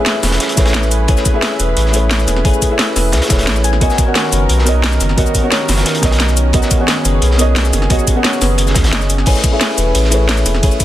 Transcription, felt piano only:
0.00 0.55 A3 medium
0.00 0.56 E4 medium
0.00 0.57 G#4 medium
0.00 0.58 B4 medium
0.00 0.59 C#5 medium
0.00 1.35 E5 medium
0.55 1.05 A3 medium
0.55 1.06 E4 medium
0.55 1.06 G#4 medium
0.55 1.07 B4 medium
0.59 1.07 C#5 medium
1.07 1.31 A3 medium
1.07 1.32 E4 medium
1.07 1.32 G#4 medium
1.07 1.32 B4 medium
1.07 1.33 C#5 medium
1.33 1.45 A3 medium
1.33 1.45 E4 medium
1.33 1.45 G#4 medium
1.33 1.46 B4 medium
1.33 1.46 E5 medium
1.92 2.42 A3 medium
1.92 2.42 E4 medium
1.92 2.43 G#4 medium
1.92 2.43 B4 medium
1.96 2.44 C#5 medium
2.44 2.68 A3 medium
2.44 2.68 E4 medium
2.44 2.68 G#4 medium
2.44 2.69 B4 medium
2.44 2.69 C#5 medium
2.69 2.81 A3 medium
2.69 2.82 E4 medium
2.69 2.82 G#4 medium
2.69 2.82 B4 medium
2.69 2.82 E5 medium
3.28 3.78 A3 medium
3.28 3.79 E4 medium
3.28 3.79 G#4 medium
3.28 3.80 B4 medium
3.32 3.80 C#5 medium
3.80 4.04 B3 medium
3.80 4.05 F#4 medium
3.80 4.05 A#4 medium
3.80 4.05 C#5 medium
3.80 4.05 D#5 medium
4.06 4.18 B3 medium
4.06 4.18 F#4 medium
4.06 4.18 A#4 medium
4.06 4.18 C#5 medium
4.06 4.19 F#5 medium
4.64 5.15 B3 medium
4.64 5.15 F#4 medium
4.64 5.16 A#4 medium
4.64 5.16 C#5 medium
4.69 5.17 D#5 medium
5.16 5.41 B3 medium
5.16 5.41 F#4 medium
5.16 5.41 A#4 medium
5.16 5.41 C#5 medium
5.16 5.42 D#5 medium
5.42 5.54 B3 medium
5.42 5.54 F#4 medium
5.42 5.54 A#4 medium
5.42 5.55 C#5 medium
5.42 5.55 F#5 medium
6.01 6.51 B3 medium
6.01 6.51 F#4 medium
6.01 6.52 A#4 medium
6.01 6.52 C#5 medium
6.05 6.53 D#5 medium
6.53 6.77 B3 medium
6.53 6.77 F#4 medium
6.53 6.77 A#4 medium
6.53 6.78 C#5 medium
6.53 6.78 D#5 medium
6.79 6.90 B3 medium
6.79 6.91 F#4 medium
6.79 6.91 A#4 medium
6.79 6.91 C#5 medium
6.79 6.91 F#5 medium
7.37 7.87 B3 medium
7.37 7.88 F#4 medium
7.37 7.88 A#4 medium
7.37 7.89 C#5 medium
7.41 7.89 D#5 loud
7.89 8.13 B3 medium
7.89 8.14 F#4 medium
7.89 8.14 A#4 medium
7.89 8.14 C#5 medium
7.89 8.14 D#5 loud
8.15 8.27 B3 medium
8.15 8.27 F#4 medium
8.15 8.27 A#4 medium
8.15 8.27 C#5 medium
8.15 8.28 F#5 medium
9.26 9.50 A3 medium
9.26 9.50 E4 medium
9.26 9.50 G#4 medium
9.26 9.51 B4 medium
9.26 9.51 C#5 medium
9.51 9.63 A3 medium
9.51 9.63 E4 medium
9.51 9.64 G#4 medium
9.51 9.64 B4 medium
9.51 9.64 E5 medium
10.10 10.60 A3 medium
10.10 10.60 E4 medium
10.10 10.61 G#4 medium
10.10 10.61 B4 medium
10.14 10.62 C#5 medium
10.62 10.85 A3 medium
10.62 10.85 E4 medium
10.62 10.85 G#4 medium
10.62 10.85 B4 medium
10.62 10.85 C#5 medium

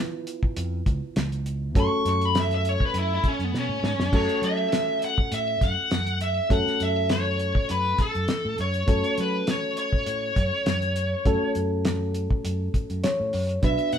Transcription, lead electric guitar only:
1.80 2.07 C#6 loud
2.09 2.25 C#6 loud
2.25 2.37 B5 loud
2.39 2.53 E5 medium
2.55 2.69 E5 medium
2.69 2.82 C#5 loud
2.86 2.97 B4 loud
2.98 3.12 E4 medium
3.15 3.26 E4 medium
3.28 3.44 C#4 medium
3.44 3.58 B3 medium
3.58 4.14 C#4 loud
4.15 4.45 C#5 medium
4.45 4.99 E5 loud
5.05 5.34 F#5 loud
5.34 5.63 E5 medium
5.63 6.18 F#5 loud
6.22 6.52 E5 loud
6.52 6.82 F#5 loud
6.83 7.12 E5 medium
7.12 7.66 C#5 medium
7.71 7.98 B4 medium
8.02 8.56 A4 medium
8.61 9.15 C#5 loud
9.21 9.50 B4 medium
9.50 9.78 C#5 medium
9.79 11.52 C#5 medium
13.65 13.92 E5 medium
13.93 13.98 F#5 medium

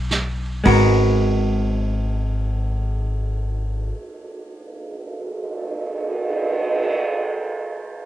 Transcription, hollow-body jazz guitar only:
0.00 0.62 G#3 soft
0.00 0.64 B3 soft
0.00 0.65 F#4 soft
0.00 0.66 A#4 soft
0.64 3.93 G#3 soft
0.64 3.94 B3 soft
0.64 3.95 F#4 soft
0.64 3.96 A#4 soft

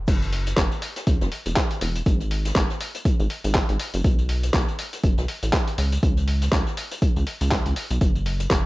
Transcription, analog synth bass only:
0.08 0.54 F#1 loud
0.57 0.69 F#1 loud
1.07 1.18 C#2 medium
1.21 1.30 F#1 loud
1.46 1.54 E1 medium
1.81 2.02 E1 loud
2.06 2.52 G#1 loud
2.56 2.67 G#1 loud
3.20 3.28 G#1 loud
3.44 3.63 G#1 loud
3.69 3.77 G#1 medium
3.94 4.02 F#1 loud
4.04 4.50 B1 loud
4.54 4.65 B1 loud
5.04 5.15 F#1 loud
5.18 5.26 B1 loud
5.43 5.51 A1 medium
5.78 5.98 C#2 loud
6.03 6.49 C#2 loud
6.53 6.64 C#2 loud
7.16 7.25 C#2 loud
7.41 7.60 C#2 loud
7.66 7.74 C#2 medium
7.91 7.99 B1 loud
8.01 8.47 F#1 loud
8.51 8.62 F#1 loud

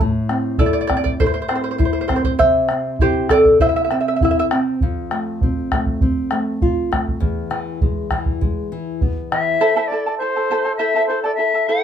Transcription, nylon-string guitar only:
0.01 2.36 A2 medium
0.29 0.58 C4 soft
0.60 0.89 E4 soft
0.90 1.19 C4 soft
1.20 1.49 E4 medium
1.50 1.79 C4 soft
1.79 2.08 E4 soft
2.10 2.39 C4 soft
2.40 4.76 C3 medium
2.71 2.99 C4 soft
3.01 3.29 E4 soft
3.31 3.59 C4 soft
3.60 3.89 E4 soft
3.91 4.19 C4 soft
4.22 4.50 E4 soft
4.52 4.80 C4 soft
4.82 7.17 F2 medium
5.12 5.40 A3 soft
5.43 5.70 C4 soft
5.73 6.01 A3 soft
6.02 6.30 C4 soft
6.32 6.60 A3 soft
6.62 6.90 F4 medium
6.92 7.20 A3 medium
7.20 9.56 E2 medium
7.50 7.79 E3 soft
7.82 8.10 G#3 soft
8.12 8.40 E3 soft
8.41 8.70 G#3 soft
8.72 9.00 E3 soft
9.02 9.30 B3 soft
9.32 9.60 E3 soft

